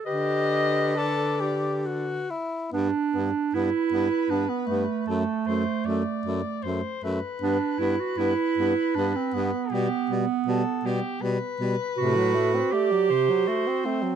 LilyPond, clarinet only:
\new Staff \with { instrumentName = "Clarinet" } { \time 3/4 \key g \major \tempo 4 = 78 b'2~ b'8 r8 | d'4 e'4 d'16 b16 a8~ | a2~ a8 r8 | d'8 e'16 fis'16 e'4 d'16 c'16 b8~ |
b2~ b8 r8 | fis'4 g'4 fis'8 c'8 | }